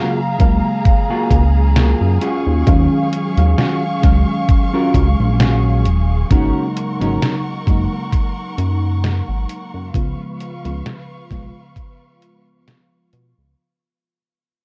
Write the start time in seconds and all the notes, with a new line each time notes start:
Already playing: C#3 F#3 G#3 A#3 F4 F#4 G#4 F5 A#5
0.38 C#2 C#3 F#3 G#3 A#3 F5, muted clean electric guitar stroke, kick, closed hi-hat
0.65 muted clean electric guitar stroke
0.85 kick, closed hi-hat
1.10 A#3 F4 F#4 G#4
1.31 C#2, kick, closed hi-hat
1.76 A#3 F4 F#4 G#4, snare, closed hi-hat
2.01 F#2
2.21 C#4 F4 F#4 G#4 F5 C#6, closed hi-hat
2.46 D#2
2.66 D#2 D#3 F#3 G#3 C#4 F5, kick, closed hi-hat
3.13 muted clean electric guitar stroke, closed hi-hat
3.37 D#2 D#3 F#3 G#3 C#4 F5, closed hi-hat
3.57 C#4 F4 F#4 G#4, snare, closed hi-hat
4.01 C#2 D#3 F#3 G#3 C#4 F5, muted clean electric guitar stroke, kick, snare, closed hi-hat
4.28 muted clean electric guitar stroke
4.49 kick, closed hi-hat
4.73 C#4 F4 F#4 A#4
4.94 C#2, kick, closed hi-hat
5.19 A#1
5.40 C#4 F4 F#4 G#4, snare, closed hi-hat
5.85 D#1, closed hi-hat
6.30 G#1 C#3 F#3 G#3 A#3 C#4 D#4 F#4 A#4 F#5 C#6, kick, closed hi-hat
6.77 closed hi-hat
7.00 G#1 C#3 F#3 G#3 A#3 C#4 D#4 F#4 A#4, closed hi-hat
7.22 snare, closed hi-hat
7.66 F#1 C#3 F#3 G#3 A#3 D#4, muted clean electric guitar stroke, kick, closed hi-hat
7.92 muted clean electric guitar stroke
8.12 kick, closed hi-hat
8.58 F#2, muted clean electric guitar stroke, closed hi-hat
9.04 muted clean electric guitar stroke, snare, closed hi-hat
9.28 G#1, muted clean electric guitar stroke
9.49 closed hi-hat
9.74 F#2, muted clean electric guitar stroke
9.93 C#2 C#3 F3 G#3 B3 F4 B4 F5 C#6, kick, closed hi-hat
10.40 closed hi-hat
10.64 C#2 C#3 F3 G#3 B3 F4, closed hi-hat
10.86 snare, closed hi-hat
11.29 B1 C#3 F3 G#3 B3 F4, kick, snare, closed hi-hat
11.76 kick, closed hi-hat
12.22 closed hi-hat
12.68 snare, closed hi-hat
13.13 B2, closed hi-hat
13.38 C#2